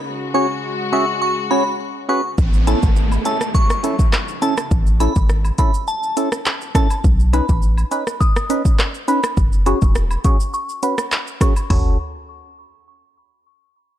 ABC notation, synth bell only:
X:1
M:4/4
L:1/16
Q:1/4=103
K:F#dor
V:1 name="Synth bell"
z2 c' z3 c' z c' z b z3 c' z | z2 a z3 a z c'3 z3 a z | z2 b z3 b z a3 z3 a z | z2 b z3 b z d'3 z3 b z |
z2 c' z3 c' z c' z b z3 c' z | c'2 z12 z2 |]